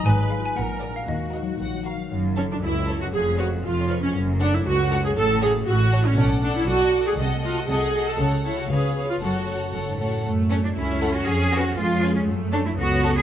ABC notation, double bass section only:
X:1
M:2/4
L:1/8
Q:1/4=118
K:Ebm
V:1 name="Double bass section" clef=bass
A,,,2 B,,,2 | E,,2 B,,,2 | [K:F#m] F,,,2 C,,2 | ^E,,,2 E,,,2 |
F,,,2 C,,2 | A,,,2 A,,,2 | B,,,2 B,,,2 | =C,,2 C,,2 |
C,,2 C,,2 | F,,,2 F,,,2 | F,,2 C,,2 | ^E,,2 E,,2 |
F,,2 C,,2 |]